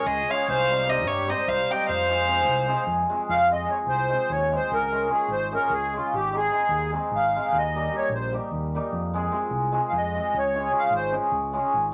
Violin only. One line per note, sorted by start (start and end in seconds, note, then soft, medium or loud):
0.06 0.32 D#5 loud
0.30 0.49 F5 medium
0.49 0.91 F5 loud
0.89 1.08 D#5 medium
1.07 1.31 C#5 medium
1.30 1.50 D#5 medium
1.48 1.73 F5 medium
1.71 1.88 G5 loud
1.88 2.84 F5 loud